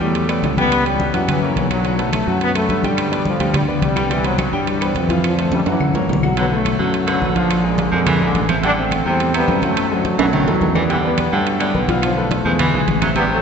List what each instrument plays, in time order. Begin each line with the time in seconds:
0.01 fingered electric bass E2, trombone section F#3 A3, grand piano G3 G4 G5, high conga
0.15 high conga, high timbale
0.28 grand piano B3 B4 D5, high conga, high timbale, claves
0.43 fingered electric bass C#2, high conga, high timbale, low timbale
0.57 grand piano G3 G4 G5, trombone section G3 B3, high conga, high timbale
0.72 high conga, high timbale, claves
0.85 trombone section E3 G3, grand piano B3 B4 C#5, high conga, high timbale
1.00 high conga
1.14 fingered electric bass F#2, trombone section C#3 E3, grand piano F#3 F#4 F#5, high conga, high timbale
1.28 trombone section C#3 E3, high conga, low conga, high timbale, claves
1.42 grand piano A#3 A#4 C#5, high conga
1.56 fingered electric bass B1, trombone section C#3 E3, high conga, high timbale, low timbale
1.70 trombone section D3 F#3, grand piano F#3 F#4 F#5, high conga, high timbale, claves
1.84 grand piano F#3 F#4 F#5, high conga, high timbale
1.99 grand piano A3 A4 B4, high conga, high timbale
2.13 trombone section F#3 A3, high conga, high timbale, claves
2.27 fingered electric bass F#2, grand piano F#3 F#4 F#5, high conga
2.41 trombone section F#3 B3, high conga, high timbale
2.55 trombone section F#3 A3, grand piano A3 A4 B4, high conga, high timbale, claves
2.69 fingered electric bass G2, high conga, high timbale
2.83 trombone section D3 G3, grand piano G3 G4 G5, high conga, high timbale
2.97 high conga, high timbale, claves
3.11 grand piano B3 B4 D5, high conga, high timbale
3.25 trombone section D3 F3, high conga
3.39 fingered electric bass D2, grand piano G3 G4 G5, high conga, high timbale
3.54 trombone section D3 G3, high conga, low conga, high timbale, claves
3.68 grand piano B3 B4 D5, high conga
3.82 fingered electric bass C2, trombone section D3 G3, high conga, high timbale
3.96 grand piano G3 G4 G5, high conga, high timbale, claves
4.10 trombone section C3 E3, grand piano G3 G4 G5, high conga, high timbale
4.24 trombone section D3 F#3, grand piano B3 B4 C5, high conga, high timbale
4.38 high conga, high timbale, claves
4.53 fingered electric bass G2, trombone section E3 G3, grand piano G3 G4 G5, high conga
4.66 trombone section E3 G3, high conga, high timbale
4.81 grand piano B3 B4 C5, high conga, high timbale, claves
4.95 fingered electric bass F2, trombone section C3 E3, high conga, high timbale
5.09 grand piano F3 F4 F5, high conga, high timbale
5.24 trombone section D3 F3, high conga, high timbale, claves
5.38 grand piano A3 A4 C5, high conga, high timbale
5.52 trombone section D#3 G3, high conga, high timbale
5.66 fingered electric bass F#2, trombone section C#3 E3, grand piano F#3 F#4 F#5, high conga, high timbale
5.80 high conga, low conga, claves
5.94 grand piano A#3 A#4 C#5, high conga, low timbale
6.08 fingered electric bass B1, low timbale
6.13 low conga
6.22 grand piano F#3 F#4 F#5, low conga, low timbale, claves
6.37 baritone saxophone D3, grand piano F#3 F#4 F#5, trombone section F#3 B3, high conga, high timbale
6.51 trombone section F#3 A3, grand piano A3 A4 B4, high conga
6.65 high conga, high timbale, claves
6.79 fingered electric bass F#2, baritone saxophone D3, grand piano F#3 F#4 F#5, trombone section F#3 A3
6.94 high conga, high timbale
7.06 baritone saxophone D3, trombone section D3 F#3, grand piano A3 A4 B4, high conga, high timbale, claves
7.21 fingered electric bass A#1, grand piano A3 A4 B4, high conga
7.35 trombone section D3 F3, grand piano F3 F4 F5, high conga, high timbale
7.50 high conga, high timbale, claves
7.64 trombone section A#2 D3, grand piano G#3 G#4 A#4, high conga
7.78 high conga, high timbale
7.92 fingered electric bass F2, trombone section A#2 D3, baritone saxophone F3, grand piano G#3 G#4 A#4, high conga
8.06 baritone saxophone E3, high conga, low conga, high timbale, claves
8.20 fingered electric bass A#1, trombone section A#2 D3, grand piano G#3 G#4 A#4, high conga
8.34 fingered electric bass A1, high conga, high timbale
8.49 baritone saxophone F3, grand piano C4 C5 E5, high conga, high timbale, claves
8.62 baritone saxophone D3, grand piano G3 G4 G5, trombone section B3 D4, high conga, high timbale
8.77 trombone section A3 C4, grand piano C4 C5 E5, high conga
8.91 high conga, high timbale, claves
9.05 fingered electric bass E2, baritone saxophone C3, grand piano G3 G4 G5, trombone section A3 C4
9.20 high conga, high timbale
9.34 baritone saxophone C3, trombone section G3 B3, grand piano C4 C5 E5, high conga, high timbale, claves
9.48 fingered electric bass F#2, grand piano C4 C5 E5, high conga, low timbale
9.62 grand piano F#3 F#4 F#5, trombone section F#3 A3, high conga, high timbale
9.77 high conga, high timbale, claves
9.91 trombone section D3 F#3, grand piano A3 A4 C5, high conga
10.05 high conga, high timbale
10.18 fingered electric bass B1, trombone section D#3 F#3, baritone saxophone E3, grand piano A3 A4 B4, high conga, high timbale
10.33 baritone saxophone D#3, high conga, low conga, high timbale, claves
10.47 fingered electric bass D#2, trombone section D#3 F#3, grand piano A3 A4 B4, high conga, low timbale
10.61 fingered electric bass E2, high conga, low timbale
10.75 baritone saxophone E3, grand piano B3 B4 D5, high conga, low timbale, claves
10.89 trombone section B2 E3, baritone saxophone D3, grand piano G3 G4 G5, high conga, high timbale
11.04 trombone section G3 B3, grand piano B3 B4 D5, high conga
11.18 high conga, high timbale, claves
11.32 fingered electric bass G2, baritone saxophone D3, trombone section F#3 A3, grand piano G3 G4 G5
11.46 high conga, high timbale
11.60 baritone saxophone D3, grand piano B3 B4 D5, high conga, high timbale, claves
11.75 fingered electric bass B1, trombone section E3 G3, grand piano B3 B4 D5, high conga
11.88 grand piano F3 F4 F5, high conga, high timbale
12.02 trombone section D3 F3, high conga, high timbale, claves
12.17 grand piano A3 A4 B4, high conga
12.31 trombone section F3 A3, high conga, high timbale
12.45 fingered electric bass E2, baritone saxophone F3, grand piano G#3 G#4 B4, high conga
12.59 baritone saxophone E3, trombone section G#3 B3, high conga, low conga, high timbale, claves
12.73 fingered electric bass B1, grand piano G#3 G#4 B4, high conga, low conga
12.88 fingered electric bass A1, high conga, high timbale
13.01 baritone saxophone F#3, grand piano C4 C5 E5, high conga, high timbale, claves
13.16 baritone saxophone C3, grand piano G3 G4 G5, trombone section G3 B3, high conga, high timbale
13.30 trombone section F#3 A3, grand piano C4 C5 E5, high conga